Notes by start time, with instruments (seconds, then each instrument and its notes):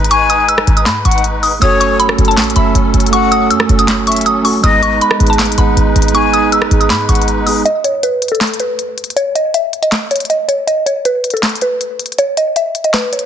Already playing: 808-style bass G#1, accordion G#3 D#4 B4
0.04 closed hi-hat
0.11 flute G#5, synth pluck C#6, closed hi-hat
0.30 synth pluck D#6, closed hi-hat
0.48 synth pluck E6, closed hi-hat
0.58 cross-stick
0.67 808-style bass G#1, closed hi-hat
0.77 synth pluck D#6, closed hi-hat
0.86 808-style bass G#2, synth pluck B5, snare, clap, closed hi-hat
1.05 808-style bass G#1, flute F#5, synth pluck C#6, closed hi-hat
1.11 closed hi-hat
1.18 closed hi-hat
1.24 closed hi-hat
1.43 synth pluck D#6, open hi-hat
1.60 808-style bass F#1, accordion F#3 C#4 A4, tine electric piano A3 C#4 F#4, flute C#5, synth pluck D#6, closed hi-hat
1.64 tine electric piano A4
1.80 synth pluck C#6, closed hi-hat
2.00 synth pluck B5, closed hi-hat
2.09 cross-stick
2.16 808-style bass F#1, tine electric piano A3 C#4 F#4, closed hi-hat
2.21 tine electric piano A4
2.25 synth pluck A5, closed hi-hat
2.31 closed hi-hat
2.37 808-style bass A1, snare, clap, closed hi-hat
2.44 closed hi-hat
2.50 tine electric piano A3, closed hi-hat
2.55 808-style bass F#1, tine electric piano C#4 F#4 A4, flute E5, synth pluck B5, closed hi-hat
2.75 808-style bass F#1, closed hi-hat
2.94 808-style bass F#1, closed hi-hat
3.00 closed hi-hat
3.06 tine electric piano A3, closed hi-hat
3.12 tine electric piano C#4 F#4 A4, flute F#5, synth pluck C#6, closed hi-hat
3.32 synth pluck D#6, closed hi-hat
3.50 808-style bass F#2, synth pluck E6, closed hi-hat
3.60 cross-stick
3.67 808-style bass F#1, tine electric piano A3 C#4 F#4, closed hi-hat
3.72 tine electric piano A4
3.79 synth pluck D#6, closed hi-hat
3.88 snare, clap, closed hi-hat
4.07 flute E5, synth pluck C#6, closed hi-hat
4.12 closed hi-hat
4.16 closed hi-hat
4.21 closed hi-hat
4.26 synth pluck D#6, closed hi-hat
4.42 tine electric piano A3 C#4 F#4, synth pluck C#6, open hi-hat
4.47 tine electric piano A4
4.61 808-style bass G#1, tine electric piano G#3 B3 D#4, accordion G#3 D#4 B4, flute D#5, synth pluck D#6, closed hi-hat
4.66 tine electric piano G#4
4.82 synth pluck C#6, closed hi-hat
5.01 synth pluck B5, closed hi-hat
5.11 cross-stick
5.18 808-style bass G#1, tine electric piano G#3 B3 D#4, closed hi-hat
5.23 tine electric piano G#4
5.27 synth pluck A5, closed hi-hat
5.33 closed hi-hat
5.39 snare, clap, closed hi-hat
5.45 closed hi-hat
5.52 tine electric piano G#3, closed hi-hat
5.57 808-style bass G#1, tine electric piano B3 D#4 G#4, flute F#5, synth pluck B5, closed hi-hat
5.77 808-style bass G#1, closed hi-hat
5.96 808-style bass G#1, closed hi-hat
6.02 closed hi-hat
6.08 tine electric piano G#3, closed hi-hat
6.14 tine electric piano B3 D#4 G#4, flute G#5, synth pluck C#6, closed hi-hat
6.33 synth pluck D#6, closed hi-hat
6.52 synth pluck E6, closed hi-hat
6.62 cross-stick
6.69 808-style bass G#1, tine electric piano G#3 B3 D#4, closed hi-hat
6.73 tine electric piano G#4
6.80 synth pluck D#6, closed hi-hat
6.90 808-style bass G#2, synth pluck B5, snare, clap, closed hi-hat
7.09 808-style bass G#1, flute F#5, synth pluck C#6, closed hi-hat
7.15 closed hi-hat
7.22 closed hi-hat
7.28 closed hi-hat
7.44 tine electric piano G#3 B3 D#4, synth pluck D#6, open hi-hat
7.49 tine electric piano G#4
7.65 synth pluck D#5, closed hi-hat
7.84 synth pluck C#5, closed hi-hat
8.03 synth pluck B4, closed hi-hat
8.22 closed hi-hat
8.28 synth pluck A4, closed hi-hat
8.35 closed hi-hat
8.41 snare, clap, closed hi-hat
8.47 closed hi-hat
8.54 closed hi-hat
8.60 synth pluck B4, closed hi-hat
8.79 closed hi-hat
8.98 closed hi-hat
9.04 closed hi-hat
9.10 closed hi-hat
9.16 synth pluck C#5, closed hi-hat
9.35 synth pluck D#5, closed hi-hat
9.54 synth pluck E5, closed hi-hat
9.73 closed hi-hat
9.82 synth pluck D#5, closed hi-hat
9.92 snare, clap, closed hi-hat
10.11 synth pluck C#5, closed hi-hat
10.16 closed hi-hat
10.20 closed hi-hat
10.25 closed hi-hat
10.30 synth pluck D#5, closed hi-hat
10.48 synth pluck C#5, closed hi-hat
10.67 synth pluck D#5, closed hi-hat
10.86 synth pluck C#5, closed hi-hat
11.05 synth pluck B4, closed hi-hat
11.24 closed hi-hat
11.30 synth pluck A4, closed hi-hat
11.37 closed hi-hat
11.43 snare, clap, closed hi-hat
11.49 closed hi-hat
11.55 closed hi-hat
11.61 synth pluck B4, closed hi-hat
11.81 closed hi-hat
11.99 closed hi-hat
12.06 closed hi-hat
12.12 closed hi-hat
12.18 synth pluck C#5, closed hi-hat
12.37 synth pluck D#5, closed hi-hat
12.56 synth pluck E5, closed hi-hat
12.75 closed hi-hat
12.84 synth pluck D#5, closed hi-hat
12.94 synth pluck B4, snare, clap, closed hi-hat
13.13 synth pluck C#5, closed hi-hat
13.19 closed hi-hat